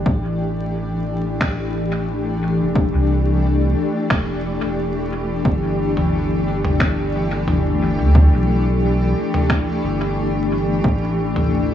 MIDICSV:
0, 0, Header, 1, 4, 480
1, 0, Start_track
1, 0, Tempo, 674157
1, 42, Time_signature, 4, 2, 24, 8
1, 8361, End_track
2, 0, Start_track
2, 0, Title_t, "Ambient pad"
2, 0, Program_c, 0, 92
2, 0, Note_on_c, 0, 52, 80
2, 0, Note_on_c, 0, 57, 86
2, 0, Note_on_c, 0, 62, 70
2, 0, Note_on_c, 0, 67, 76
2, 8361, Note_off_c, 0, 52, 0
2, 8361, Note_off_c, 0, 57, 0
2, 8361, Note_off_c, 0, 62, 0
2, 8361, Note_off_c, 0, 67, 0
2, 8361, End_track
3, 0, Start_track
3, 0, Title_t, "Sub bass"
3, 0, Program_c, 1, 38
3, 42, Note_on_c, 1, 33, 93
3, 1851, Note_on_c, 1, 28, 88
3, 1862, Note_off_c, 1, 33, 0
3, 2060, Note_off_c, 1, 28, 0
3, 2089, Note_on_c, 1, 36, 86
3, 2660, Note_off_c, 1, 36, 0
3, 2921, Note_on_c, 1, 28, 89
3, 3265, Note_off_c, 1, 28, 0
3, 3292, Note_on_c, 1, 28, 86
3, 3862, Note_off_c, 1, 28, 0
3, 3881, Note_on_c, 1, 31, 94
3, 5692, Note_on_c, 1, 38, 84
3, 5703, Note_off_c, 1, 31, 0
3, 5901, Note_off_c, 1, 38, 0
3, 5930, Note_on_c, 1, 35, 82
3, 6500, Note_off_c, 1, 35, 0
3, 7000, Note_on_c, 1, 31, 97
3, 7700, Note_off_c, 1, 31, 0
3, 7720, Note_on_c, 1, 33, 96
3, 8361, Note_off_c, 1, 33, 0
3, 8361, End_track
4, 0, Start_track
4, 0, Title_t, "Drums"
4, 42, Note_on_c, 9, 36, 100
4, 113, Note_off_c, 9, 36, 0
4, 1002, Note_on_c, 9, 26, 85
4, 1002, Note_on_c, 9, 36, 100
4, 1073, Note_off_c, 9, 26, 0
4, 1073, Note_off_c, 9, 36, 0
4, 1961, Note_on_c, 9, 36, 100
4, 2033, Note_off_c, 9, 36, 0
4, 2921, Note_on_c, 9, 26, 92
4, 2922, Note_on_c, 9, 36, 97
4, 2992, Note_off_c, 9, 26, 0
4, 2993, Note_off_c, 9, 36, 0
4, 3881, Note_on_c, 9, 36, 91
4, 3952, Note_off_c, 9, 36, 0
4, 4251, Note_on_c, 9, 45, 49
4, 4322, Note_off_c, 9, 45, 0
4, 4732, Note_on_c, 9, 45, 69
4, 4803, Note_off_c, 9, 45, 0
4, 4842, Note_on_c, 9, 36, 98
4, 4843, Note_on_c, 9, 26, 84
4, 4913, Note_off_c, 9, 36, 0
4, 4914, Note_off_c, 9, 26, 0
4, 5324, Note_on_c, 9, 45, 70
4, 5395, Note_off_c, 9, 45, 0
4, 5803, Note_on_c, 9, 36, 94
4, 5874, Note_off_c, 9, 36, 0
4, 6651, Note_on_c, 9, 45, 75
4, 6722, Note_off_c, 9, 45, 0
4, 6762, Note_on_c, 9, 36, 94
4, 6763, Note_on_c, 9, 26, 82
4, 6833, Note_off_c, 9, 36, 0
4, 6834, Note_off_c, 9, 26, 0
4, 7719, Note_on_c, 9, 36, 95
4, 7790, Note_off_c, 9, 36, 0
4, 8089, Note_on_c, 9, 45, 59
4, 8161, Note_off_c, 9, 45, 0
4, 8361, End_track
0, 0, End_of_file